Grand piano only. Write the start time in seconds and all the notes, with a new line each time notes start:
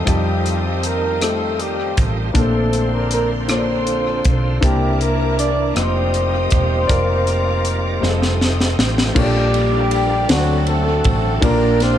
Already playing: A3 D#4 F4 G4 C5
0.05 G3 D#4 F4 G4 A5
1.20 A3 D#4 F4 G4 C5
2.33 A#2 A#3 D4 F4 A#4 A5
2.42 C5
3.48 A#3 D4 F4 A4 C#5
3.56 D5
4.61 C3 A#3 D4 E4 C5 A5
5.74 A#3 D#4 F4 G4 C5
6.87 F4 A#4 D5
8.01 G3 C4 D#4 F4 G#4
8.10 A4
9.14 A#2 A#3 D4 F4 A4 C#5
9.23 D5
10.28 D3 C4 D4 F#4 A4 D5
11.41 A#2 A#3 D4 F4 G4 D5